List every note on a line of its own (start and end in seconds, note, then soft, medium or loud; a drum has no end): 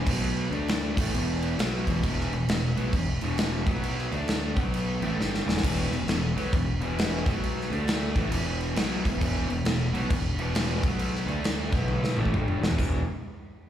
0.04 0.48 B1 medium
0.04 0.49 B2 loud
0.04 0.50 F#3 medium
0.04 0.50 B3 loud
0.04 kick loud
0.04 crash loud
0.24 crash medium
0.50 0.93 D2 loud
0.50 0.95 D3 medium
0.50 0.95 A3 loud
0.50 0.95 D4 loud
0.50 crash soft
0.68 snare loud
0.68 crash medium
0.95 1.11 A1 medium
0.95 1.12 A2 medium
0.95 1.12 E3 medium
0.95 1.12 A3 medium
0.95 kick loud
0.95 crash loud
1.12 1.54 E1 medium
1.12 1.57 E2 medium
1.12 1.56 B2 medium
1.12 1.57 E3 loud
1.12 crash medium
1.43 crash medium
1.57 1.85 B1 loud
1.57 1.85 B2 medium
1.57 1.86 F#3 loud
1.57 1.86 B3 loud
1.57 snare loud
1.57 crash medium
1.87 2.02 E1 medium
1.87 2.03 E2 medium
1.87 2.03 B2 loud
1.87 2.03 E3 loud
1.87 kick medium
1.87 crash medium
2.03 2.30 E1 medium
2.03 2.31 E2 loud
2.03 2.32 B2 loud
2.03 2.32 E3 loud
2.03 kick loud
2.03 crash medium
2.20 snare soft
2.32 2.47 E1 medium
2.32 2.45 E2 medium
2.32 2.45 B2 medium
2.32 crash medium
2.48 2.75 E1 medium
2.48 2.71 E2 medium
2.48 2.72 B2 medium
2.48 snare loud
2.48 crash medium
2.76 2.92 B1 loud
2.76 2.92 B2 medium
2.76 2.93 F#3 medium
2.76 2.92 B3 loud
2.76 crash medium
2.93 3.20 E1 medium
2.93 3.17 E2 medium
2.93 3.17 B2 medium
2.93 kick loud
2.93 crash medium
3.21 3.64 E1 loud
3.21 3.66 E2 medium
3.21 3.65 B2 loud
3.21 3.67 E3 loud
3.21 crash medium
3.38 snare loud
3.38 crash medium
3.66 4.09 B1 loud
3.66 4.11 B2 medium
3.66 4.11 F#3 loud
3.66 4.11 B3 loud
3.66 kick loud
3.66 crash medium
3.84 crash medium
3.98 snare soft
4.11 4.54 D2 medium
4.11 4.57 D3 loud
4.11 4.57 A3 loud
4.11 4.58 D4 loud
4.11 crash soft
4.28 snare loud
4.28 crash medium
4.57 4.99 B1 loud
4.57 5.01 B2 medium
4.57 5.01 F#3 medium
4.57 5.02 B3 loud
4.57 kick loud
4.57 crash medium
4.74 crash medium
5.01 5.17 A1 medium
5.01 5.17 A2 medium
5.01 5.18 E3 medium
5.01 5.18 A3 loud
5.01 crash medium
5.18 5.44 G1 loud
5.18 5.46 G2 medium
5.18 5.46 D3 medium
5.18 5.46 G3 loud
5.18 snare medium
5.34 snare medium
5.46 5.62 E1 loud
5.46 5.62 E2 medium
5.46 5.62 B2 medium
5.46 5.63 E3 loud
5.46 snare loud
5.57 snare loud
5.63 5.90 E1 loud
5.63 5.91 E2 medium
5.63 5.91 B2 loud
5.63 5.91 E3 loud
5.63 kick loud
5.63 crash loud
5.91 6.06 E1 medium
5.91 6.05 E2 medium
5.91 6.05 B2 medium
5.91 crash medium
6.07 6.34 E1 medium
6.07 6.30 E2 medium
6.07 6.31 B2 medium
6.07 snare loud
6.07 crash medium
6.35 6.51 B1 medium
6.35 6.52 B2 medium
6.35 6.52 F#3 medium
6.35 6.52 B3 medium
6.35 crash medium
6.52 6.79 E1 medium
6.52 6.75 E2 medium
6.52 6.75 B2 medium
6.52 kick loud
6.52 crash medium
6.80 7.22 E1 loud
6.80 7.24 E2 medium
6.80 7.24 B2 loud
6.80 7.25 E3 loud
6.80 crash medium
6.98 snare loud
6.98 crash medium
7.25 7.67 B1 loud
7.25 7.69 B2 medium
7.25 7.70 F#3 loud
7.25 7.70 B3 loud
7.25 kick loud
7.25 crash medium
7.44 crash medium
7.60 snare soft
7.70 8.12 D2 medium
7.70 8.14 D3 medium
7.70 8.15 A3 loud
7.70 8.15 D4 loud
7.70 crash medium
7.88 snare loud
7.88 crash medium
8.15 8.31 A1 medium
8.15 8.31 A2 medium
8.15 8.31 E3 medium
8.15 8.32 A3 loud
8.15 kick loud
8.15 crash medium
8.31 8.74 E1 loud
8.31 8.76 E2 medium
8.31 8.74 B2 loud
8.31 8.76 E3 loud
8.31 crash loud
8.61 crash medium
8.75 9.03 B1 loud
8.75 9.03 B2 loud
8.75 9.04 F#3 loud
8.75 9.04 B3 loud
8.75 snare loud
8.75 crash medium
9.03 9.20 E1 loud
9.03 9.17 E2 medium
9.03 9.18 B2 loud
9.03 9.18 E3 loud
9.03 kick loud
9.03 crash medium
9.18 9.48 E1 medium
9.18 9.47 E2 medium
9.18 9.47 B2 loud
9.18 9.48 E3 loud
9.18 kick loud
9.18 crash medium
9.48 9.65 E1 medium
9.48 9.62 E2 medium
9.48 9.62 B2 medium
9.48 crash medium
9.65 9.92 E1 medium
9.65 9.88 E2 medium
9.65 9.88 B2 medium
9.65 snare loud
9.65 crash medium
9.93 10.08 B1 loud
9.93 10.09 B2 medium
9.93 10.10 F#3 medium
9.93 10.10 B3 loud
9.93 crash medium
10.10 10.35 E1 medium
10.10 10.33 E2 medium
10.10 10.33 B2 medium
10.10 kick loud
10.10 crash medium
10.36 10.78 E1 loud
10.36 10.82 E2 loud
10.36 crash medium
10.40 10.82 B2 loud
10.40 10.83 E3 loud
10.55 snare loud
10.55 crash loud
10.83 11.25 B1 medium
10.83 11.27 B2 loud
10.83 11.27 F#3 loud
10.83 11.27 B3 loud
10.83 kick loud
10.83 crash medium
10.99 crash medium
11.15 snare soft
11.26 11.68 D2 loud
11.26 11.71 D3 medium
11.26 11.72 A3 loud
11.26 11.72 D4 loud
11.26 crash soft
11.44 snare loud
11.44 crash medium
11.71 12.14 B1 loud
11.71 12.16 B2 medium
11.71 12.16 F#3 medium
11.71 12.17 B3 loud
11.71 kick loud
11.71 crash medium
11.88 high tom medium
12.04 snare medium
12.17 12.33 A1 loud
12.17 12.32 A2 medium
12.17 12.33 E3 medium
12.17 12.33 A3 loud
12.17 mid tom medium
12.25 kick medium
12.32 12.60 G1 loud
12.32 12.60 G2 medium
12.32 12.61 D3 loud
12.32 12.61 G3 medium
12.32 mid tom loud
12.48 mid tom medium
12.60 12.77 E1 medium
12.60 12.74 E2 medium
12.60 12.75 B2 loud
12.60 12.76 E3 loud
12.60 snare loud
12.71 floor tom loud
12.76 13.05 E1 medium
12.76 12.99 E2 medium
12.76 13.00 B2 medium
12.76 13.00 E3 loud
12.76 kick loud
12.76 floor tom loud
12.76 splash medium